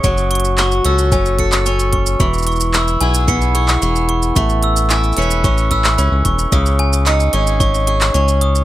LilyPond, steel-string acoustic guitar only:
\new Staff \with { instrumentName = "Steel-string acoustic guitar" } { \time 4/4 \key cis \minor \tempo 4 = 111 fis4 fis'8 <cis' fis' a'>8 cis'8 a'8 cis'4 | e4 e'8 <b e' gis'>8 b8 gis'8 b4 | a4 e'8 <cis' e' b'>8 cis'8 b'8 cis'4 | cis4 dis'8 <cis' dis' gis'>8 cis'8 gis'8 cis'4 | }